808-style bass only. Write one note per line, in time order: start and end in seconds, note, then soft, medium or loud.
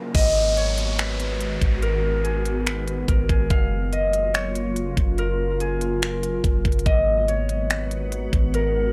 0.15 1.58 G#1 loud
1.61 3.04 G#1 loud
3.08 3.28 G#1 loud
3.29 3.50 G#1 loud
3.50 4.93 F#1 loud
4.97 6.40 F#1 loud
6.44 6.64 F#1 loud
6.65 6.85 F#1 loud
6.86 8.29 G#1 loud
8.33 8.93 G#1 loud